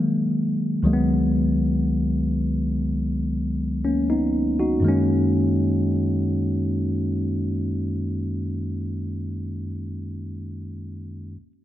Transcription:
0.00 0.82 D#3 medium
0.00 0.83 F#3 medium
0.00 0.84 G#3 medium
0.00 0.85 A#3 medium
0.83 4.79 C#2 medium
0.83 4.80 D#3 medium
0.83 4.80 F#3 medium
0.83 4.81 G#3 medium
0.87 0.92 A#3 medium
0.93 3.84 B3 medium
3.85 4.08 A#3 soft
3.85 4.08 C#4 medium
4.10 4.57 B3 medium
4.10 4.57 D#4 medium
4.60 5.07 D#4 medium
4.60 5.07 F#4 medium
4.80 9.61 F#2 medium
4.80 9.63 D#3 medium
4.84 9.65 G#3 medium
4.84 9.67 A#3 medium
4.84 9.69 C#4 medium

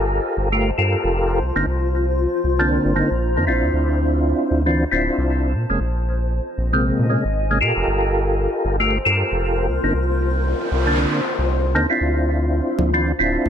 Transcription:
0.00 0.20 G1 loud
0.00 0.49 F4 medium
0.00 6.49 F4 medium
0.00 0.49 G4 medium
0.00 0.49 A4 medium
0.00 0.49 A#4 loud
0.00 6.49 C5 medium
0.00 1.41 A5 medium
0.37 0.72 G1 loud
0.52 0.71 A3 medium
0.52 0.71 F4 medium
0.52 0.71 G4 medium
0.52 0.71 A#4 loud
0.78 0.96 G2 loud
0.78 1.39 F4 medium
0.78 1.40 G4 medium
0.78 1.39 A4 medium
0.78 1.40 A#4 medium
1.04 1.42 F1 loud
1.41 1.52 C2 medium
1.56 1.64 G1 medium
1.56 1.66 D3 medium
1.56 1.66 A#3 medium
1.56 1.66 C4 medium
1.56 1.66 D#4 medium
1.67 2.27 C2 medium
2.44 2.78 C2 loud
2.44 3.73 A#5 medium
2.59 2.93 D3 medium
2.59 2.93 A#3 medium
2.59 2.93 C4 medium
2.59 2.94 D4 medium
2.85 3.03 G1 loud
2.96 3.10 D3 medium
2.96 3.10 A#3 medium
2.96 3.10 C4 medium
2.96 3.10 D#4 loud
3.11 3.39 A#1 loud
3.37 3.49 F2 medium
3.37 3.45 D3 medium
3.37 3.45 A#3 medium
3.37 3.45 C4 medium
3.37 3.45 D#4 medium
3.47 3.64 A#1 loud
3.47 4.63 C4 medium
3.47 4.63 D4 medium
3.47 4.62 E4 medium
3.47 4.63 F4 medium
3.63 3.70 D#2 medium
3.73 4.34 D2 loud
4.51 4.85 D2 loud
4.66 4.84 E3 loud
4.66 4.84 C4 medium
4.66 4.85 D4 medium
4.66 4.85 F4 loud
4.92 5.09 D1 loud
4.92 5.53 C4 medium
4.92 5.53 D4 medium
4.92 5.53 E4 medium
4.92 5.54 F4 medium
5.18 5.56 C2 loud
5.55 5.65 A#2 medium
5.69 5.77 F1 medium
5.69 5.79 C3 medium
5.69 5.80 G#3 medium
5.69 5.80 A#3 medium
5.69 5.80 C#4 medium
5.80 6.40 A#1 loud
5.97 7.87 D#5 medium
6.58 6.92 A#1 loud
6.58 7.87 G#5 medium
6.73 7.07 C3 medium
6.73 7.07 G#3 medium
6.73 7.07 A#3 medium
6.73 7.07 C4 medium
6.99 7.16 A#2 loud
7.09 7.24 C3 loud
7.09 7.24 G#3 medium
7.09 7.24 A#3 medium
7.09 7.24 C#4 loud
7.25 7.63 G#1 loud
7.50 7.59 C3 medium
7.50 7.59 G#3 medium
7.50 7.59 A#3 medium
7.50 7.59 C#4 medium
7.61 7.72 A#2 medium
7.61 8.76 F4 medium
7.61 8.77 G4 medium
7.61 8.76 A4 medium
7.61 8.77 A#4 loud
7.77 7.84 F1 medium
7.87 8.47 G1 loud
7.87 13.49 C5 medium
8.08 12.01 A#4 loud
8.28 13.49 F4 medium
8.65 8.99 G1 loud
8.80 8.98 A3 medium
8.80 8.98 F4 medium
8.80 8.98 G4 medium
8.80 8.98 A#4 loud
9.05 9.23 G2 loud
9.05 9.67 F4 medium
9.05 9.67 G4 medium
9.05 9.67 A4 medium
9.05 9.67 A#4 medium
9.32 9.70 F1 loud
9.68 9.79 C2 medium
9.83 9.91 G1 medium
9.83 9.93 D3 medium
9.83 9.93 A#3 medium
9.83 9.94 C4 medium
9.83 9.94 D#4 medium
9.94 10.54 C2 loud
9.94 noise sweep medium
10.72 11.06 C2 loud
10.87 11.21 D3 medium
10.87 11.21 A#3 medium
10.87 11.21 C4 medium
10.87 11.21 D4 loud
11.39 11.77 C2 loud
11.75 11.86 D#2 medium
11.75 11.87 D3 medium
11.75 11.87 A#3 medium
11.75 11.87 C4 medium
11.75 11.87 D#4 medium
11.90 12.90 C4 medium
11.90 12.90 D4 medium
11.90 12.90 E4 medium
11.90 12.91 F4 medium
12.01 12.61 D2 loud
12.79 13.13 D2 loud
12.79 high conga medium
12.79 low conga loud
12.94 13.12 E3 loud
12.94 13.12 C4 medium
12.94 13.12 D4 medium
12.94 13.12 F4 loud
13.19 13.37 D1 loud
13.19 13.49 C4 medium
13.19 13.49 D4 medium
13.19 13.49 E4 medium
13.19 13.49 F4 medium
13.46 13.49 C2 loud
13.46 high conga medium

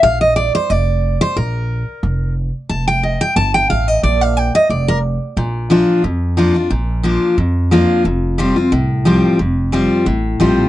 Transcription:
0.03 0.49 A#1 medium
0.03 0.21 F5 loud
0.21 0.36 D#5 loud
0.36 0.54 D5 loud
0.55 0.70 C5 loud
0.70 1.15 F1 loud
0.70 1.21 D5 medium
1.21 1.36 C5 loud
1.36 1.82 A#1 medium
1.36 2.33 A#4 medium
2.03 2.49 F1 loud
2.69 3.15 F1 medium
2.69 2.87 A5 medium
2.88 3.03 G5 loud
3.03 3.21 D#5 medium
3.21 3.36 G5 loud
3.36 3.65 G1 loud
3.36 3.54 A5 loud
3.54 3.69 G5 loud
3.70 3.98 A1 medium
3.70 3.88 F5 medium
3.88 4.03 D#5 loud
4.03 4.49 A#1 medium
4.03 4.21 D5 medium
4.21 4.37 F5 loud
4.37 4.54 G5 loud
4.55 4.70 D#5 loud
4.70 5.15 F1 medium
4.70 4.88 D5 medium
4.88 4.98 A#4 loud
5.37 5.82 A#1 medium
5.37 6.01 A#2 medium
5.70 6.02 F3 medium
5.70 6.02 A#3 medium
5.70 6.03 D4 loud
5.70 6.03 F4 loud
6.04 6.49 F2 medium
6.04 6.68 F2 medium
6.37 6.54 F3 medium
6.37 6.55 A#3 medium
6.37 6.55 D4 loud
6.37 6.53 F4 loud
6.54 6.71 D4 soft
6.54 6.70 F4 medium
6.70 7.16 A#1 medium
6.70 7.35 A#2 medium
7.03 7.36 F3 medium
7.03 7.36 A#3 medium
7.03 7.37 D4 medium
7.03 7.37 F4 medium
7.38 7.83 F2 loud
7.38 8.02 F2 medium
7.71 8.03 F3 medium
7.71 8.04 A#3 loud
7.71 8.04 D4 loud
7.71 8.04 F4 loud
8.05 8.50 F1 medium
8.05 8.69 F2 medium
8.38 8.56 F3 medium
8.38 8.56 G3 medium
8.38 8.56 C4 loud
8.38 8.55 F4 loud
8.56 8.72 C4 medium
8.56 8.71 F4 medium
8.72 9.18 C2 medium
8.72 9.36 A2 medium
9.05 9.38 F3 medium
9.05 9.38 G3 medium
9.05 9.38 C4 loud
9.05 9.38 F4 loud
9.39 9.85 F1 medium
9.39 10.03 F2 medium
9.72 10.05 F3 medium
9.72 10.05 G3 loud
9.72 10.05 C4 loud
9.72 10.05 F4 loud
10.06 10.35 A1 medium
10.06 10.69 A2 medium
10.40 10.69 A#1 medium
10.40 10.69 F3 medium
10.40 10.69 G3 medium
10.40 10.69 C4 loud
10.40 10.69 F4 medium

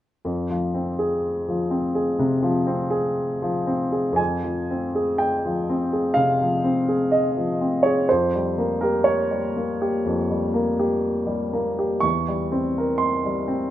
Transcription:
0.25 2.14 F2 soft
0.50 0.89 F3 soft
0.74 1.13 C4 soft
0.99 1.75 G#4 soft
1.48 1.86 F3 soft
1.71 2.09 C4 soft
1.95 2.33 G#4 soft
2.19 2.57 C3 soft
2.43 2.81 F3 soft
2.67 3.06 C4 soft
2.90 3.71 G#4 soft
3.42 3.83 F3 soft
3.67 4.08 C4 soft
3.92 4.18 G#4 soft
4.13 6.10 F2 soft
4.13 5.18 G#5 medium
4.43 4.84 F3 soft
4.71 5.10 C4 soft
4.95 5.73 G#4 soft
5.18 6.16 G5 medium
5.45 5.83 F3 soft
5.69 6.07 C4 soft
5.93 6.31 G#4 soft
6.14 6.55 C3 soft
6.14 7.12 F5 medium
6.41 6.80 F3 soft
6.64 7.03 C4 soft
6.89 7.66 G#4 soft
7.12 7.84 D#5 medium
7.37 7.75 F3 soft
7.61 7.99 C4 soft
7.83 8.09 G#4 soft
7.83 8.08 C#5 medium
8.09 10.02 F2 soft
8.09 8.81 C5 medium
8.35 8.72 G3 soft
8.58 8.96 A#3 soft
8.81 9.61 G4 soft
8.81 9.05 A#4 medium
9.04 12.03 C#5 medium
9.31 9.71 G3 soft
9.56 9.96 A#3 soft
9.82 10.21 G4 soft
10.06 12.00 F2 soft
10.31 10.69 G3 soft
10.54 10.93 A#3 soft
10.79 11.58 G4 soft
11.27 11.68 G3 soft
11.53 11.94 A#3 soft
11.79 12.04 G4 soft
12.00 13.70 E2 soft
12.00 13.00 C#6 medium
12.28 12.67 G3 soft
12.52 12.91 C4 soft
12.78 13.55 A#4 soft
12.98 13.70 C6 medium
13.26 13.64 G3 soft
13.48 13.70 C4 soft

